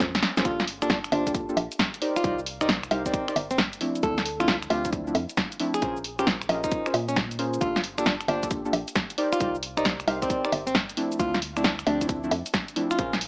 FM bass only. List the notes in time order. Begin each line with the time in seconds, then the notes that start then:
0.00 F2
0.15 C#2
0.37 A#1
0.45 G1
1.12 G1
1.57 A#1
2.24 C2
2.91 C2
3.36 G1
4.03 D2
4.70 D2
5.15 F2
5.82 A#1
6.49 A#1
6.94 A#2
7.61 G1
8.28 G1
8.73 A#1
9.40 C2
10.08 C2
10.52 G1
11.20 D2
11.87 D2
12.31 F2
12.99 A#1